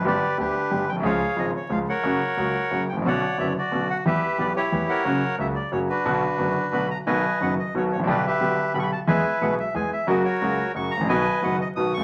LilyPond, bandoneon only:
\new Staff \with { instrumentName = "Bandoneon" } { \time 3/4 \key b \minor \tempo 4 = 179 << { d''4 b'4. g''8 | eis''4 dis''8 cis''8 eis''8 fis''8~ | fis''2~ fis''8 g''8 | fis''4 e''8 d''4 fis''8 |
e''4 d''8 cis''4 fis''8~ | fis''4 e''8 d''8 cis''8 b'8~ | b'2 b''8 ais''8 | \key b \major gis''4 fis''8 dis''8 cis''8 cis''8 |
d''8 e''4. b''32 cis'''32 b''16 a''8 | gis''4 fis''8 e''8 gis''8 e''8 | dis''8 cis''4. cis'''8 ais''8 | gis''4 fis''8 dis''8 dis'''8 cis'''8 | } \\ { <g' b'>4 <d' g'>4. r8 | <gis' cis''>4. r4 <ais' cis''>8~ | <ais' cis''>2~ <ais' cis''>8 r8 | <cis'' d''>4. fis'4. |
<g' b'>4. <e' g'>4 <ais' cis''>8~ | <ais' cis''>4 r4. <d' fis'>8~ | <d' fis'>2~ <d' fis'>8 r8 | <b' dis''>4. r4. |
<g' b'>8 <g' b'>4. r4 | <b' e''>4. r4. | <fis' ais'>8 <fis' ais'>4. r4 | <b' dis''>4. r4. | } >> }